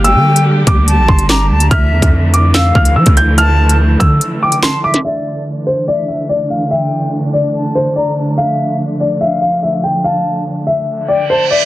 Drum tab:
HH |x--x--x-x--x---x|x--x--x-x--x-xx-|x--x--x-x--x---x|---x--x-x--x-xx-|
CP |------------x---|--------x-------|------------x---|----------------|
SD |------------o---|--------o-------|------r-----o--o|----------------|
BD |------o---o-----|o--o------o--o--|------o---------|----------------|

HH |x--x--x-x--x---x|x--x--x-x--x-xx-|----------------|
CP |----------------|----------------|----------------|
SD |----------------|----------------|----------------|
BD |----------------|----------------|----------------|